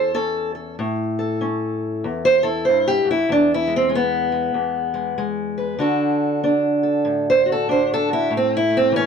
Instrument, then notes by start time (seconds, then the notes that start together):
steel-string acoustic guitar
Already playing: E2 C#4 E4 A4 C5
0.14 C#4 A4
0.55 A4
0.79 A2
1.19 A4
1.41 C#4
2.04 E2
2.25 C5
2.43 E4 A4
2.65 C5
2.69 G2
2.88 G4
3.05 F#2
3.11 E4
3.29 E2 D4
3.54 E4
3.67 G#3
3.76 C4
3.89 G#3
3.95 B3
4.32 G#3
4.54 E2
4.94 G#3
5.18 G#3
5.58 B4
5.79 D3 D4 F#4 A4
6.44 D4
6.83 A4
7.05 A2
7.30 C5
7.46 F#4
7.52 A4
7.69 D4 C5
7.94 A4
8.08 F#4
8.13 E4
8.30 A2
8.37 C4
8.57 E4
8.70 A3
8.77 C4
8.92 E3
8.96 C#4